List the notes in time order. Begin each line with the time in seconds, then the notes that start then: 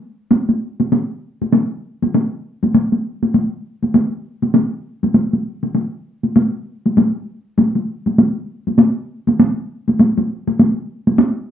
0.31 taiko high
0.49 taiko high
0.80 taiko high
0.92 taiko high
1.42 taiko high
1.53 taiko high
2.02 taiko high
2.14 taiko high
2.63 taiko high
2.74 taiko high
2.93 taiko high
3.23 taiko high
3.34 taiko high
3.83 taiko high
3.94 taiko high
4.42 taiko high
4.55 taiko high
5.03 taiko high
5.14 taiko high
5.33 taiko high
5.63 taiko high
5.75 taiko high
6.24 taiko high
6.36 taiko high
6.86 taiko high
6.97 taiko high
7.58 taiko high
7.75 taiko high
8.06 taiko high
8.18 taiko high
8.67 taiko high
8.79 taiko high
9.27 taiko high
9.40 taiko high
9.88 taiko high
9.99 taiko high
10.18 taiko high
10.47 taiko high
10.59 taiko high
11.07 taiko high
11.18 taiko high